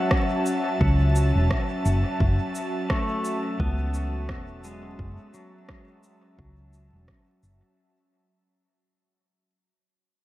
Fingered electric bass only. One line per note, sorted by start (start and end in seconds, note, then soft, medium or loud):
0.81 1.31 C#2 medium
1.35 1.49 E1 medium
1.85 2.02 F#1 medium
2.20 2.37 F#1 medium
3.59 4.29 C#2 medium
4.29 4.96 E1 medium
4.99 5.16 F#1 medium
6.39 6.89 C#2 medium
6.93 7.06 E1 medium
7.43 7.60 F#1 medium